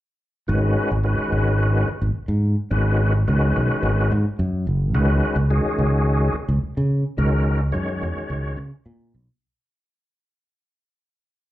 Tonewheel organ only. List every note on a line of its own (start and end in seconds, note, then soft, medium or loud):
0.48 0.90 D#3 medium
0.48 0.91 G#3 medium
0.48 0.91 C#4 medium
0.48 0.91 F#4 medium
0.48 0.91 B4 medium
1.04 1.89 D#3 medium
1.04 1.89 G#3 medium
1.04 1.89 C#4 medium
1.04 1.89 F#4 medium
1.04 1.89 B4 medium
2.70 3.14 D#3 medium
2.70 3.14 G#3 medium
2.70 3.13 C#4 medium
2.70 3.14 F#4 medium
2.70 3.14 B4 medium
3.28 4.13 D#3 medium
3.28 4.13 G#3 medium
3.28 4.13 C#4 medium
3.28 4.12 F#4 medium
3.28 4.13 B4 medium
4.95 5.37 D#3 medium
4.95 5.38 G#3 medium
4.95 5.37 C#4 medium
4.95 5.37 F#4 medium
4.95 5.37 B4 medium
5.50 6.36 D#3 medium
5.50 6.36 G#3 medium
5.50 6.36 C#4 medium
5.50 6.36 F#4 medium
5.50 6.36 G#4 medium
7.17 7.61 D#3 medium
7.17 7.61 G#3 medium
7.17 7.61 C#4 medium
7.17 7.61 F#4 medium
7.17 7.61 A#4 medium
7.72 8.59 D#3 medium
7.72 8.59 G#3 medium
7.72 8.59 C#4 medium
7.72 8.59 F#4 medium
7.72 8.59 C#5 medium